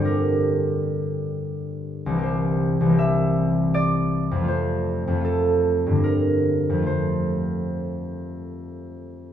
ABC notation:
X:1
M:3/4
L:1/8
Q:1/4=79
K:Fmix
V:1 name="Harp"
[Bcd]6 | c2 =e2 d2 | c2 A2 B2 | c6 |]
V:2 name="Harp" clef=bass
[G,,D,G,DG]6 | [C,,=E,B,G]2 [C,,E,B,G]4 | [F,,F,A,F]2 [F,,F,A,F]2 [G,,D,B,]2 | [F,,F,A,F]6 |]